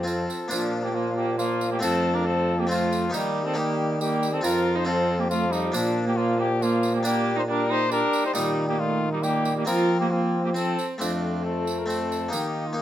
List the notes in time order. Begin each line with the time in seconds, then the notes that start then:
Already playing: F2
0.03 F3 C4 F4 A4, tambourine
0.30 tambourine
0.48 A#2 F3 A#3 D4 F4, tambourine
0.84 A#3 G4
0.93 F3 A#3 F4
1.15 A#3 G4
1.38 F3 A#3 F4, tambourine
1.61 tambourine
1.70 A#3 G4
1.79 F2 F3 A3 C4 F4 A4, tambourine
1.83 F2
2.14 D4 A#4
2.25 F3 C4 A4
2.59 A#3 G4
2.67 F3 A3 C4 F4
2.71 tambourine
2.93 tambourine
3.10 D#3 A#3 D#4 G4
3.14 D#3 G3, tambourine
3.45 C4 A4
3.54 G3 A#3 D#4 G4
4.00 G3 A#3 G4, tambourine
4.23 tambourine
4.33 C4 A4
4.41 F2 F3 C4 F4 A#4, tambourine
4.75 D#4 C5
4.85 F3 C4 F4 A4
5.19 A#3 G4
5.29 F3 A3 F4, tambourine
5.50 G3 D#4, tambourine
5.72 A#2 F3 A#3 D4, tambourine
6.06 A#3 G4
6.16 F3 A#3 F4
6.37 A#3 G4
6.60 F3 A#3 F4, tambourine
6.83 tambourine
6.93 A#3 G4
7.03 G3 A#3 D4 G4, tambourine
7.36 D#4 C5
7.48 G3 D4 A#4
7.69 D#4 C5
7.91 G3 D4 A#4, tambourine
8.13 tambourine
8.24 D#4 C5
8.34 A#2 D#3 G3 D#4, tambourine
8.69 A#3 G4
8.79 A3 F4
9.12 G3 D#4
9.22 G3 A#3 G4, tambourine
9.45 tambourine
9.57 A#3 G4
9.65 F3 A#3 C4 A#4, tambourine
9.69 F4
10.00 A#3 G4
10.11 A#3 C4 F4
10.44 A#3 G4
10.54 C4 A4, tambourine
10.79 tambourine
10.98 F2 A3 C4 D4 F4, tambourine
11.43 C4 A4
11.67 tambourine
11.79 A#4
11.86 A3 C4 A4
11.90 tambourine
12.12 tambourine
12.29 D#3 A#3 D#4
12.33 D#3 G4, tambourine
12.67 F4
12.73 A#3 D#4
12.77 G4